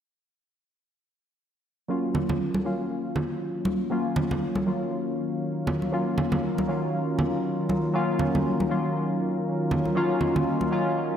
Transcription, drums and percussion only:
2.15 low conga medium
2.29 high conga medium
2.29 low conga medium
2.54 high conga medium
3.16 low conga medium
3.65 high conga medium
4.16 low conga medium
4.31 high conga medium
4.31 low conga medium
4.55 high conga medium
5.67 low conga medium
5.82 high conga medium
6.18 low conga medium
6.32 high conga medium
6.32 low conga medium
6.58 high conga medium
7.19 low conga medium
7.69 high conga medium
8.19 low conga medium
8.35 high conga medium
8.35 low conga medium
8.60 high conga medium
9.71 low conga medium
9.85 high conga medium
10.21 low conga medium
10.36 high conga medium
10.36 low conga medium
10.61 high conga medium

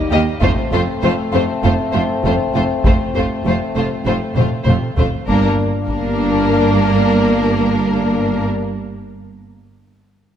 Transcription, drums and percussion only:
0.42 taiko medium
2.23 taiko medium
2.84 taiko medium
4.37 taiko mid medium
4.67 taiko mid medium
4.97 taiko low medium
5.28 taiko soft
5.88 taiko soft

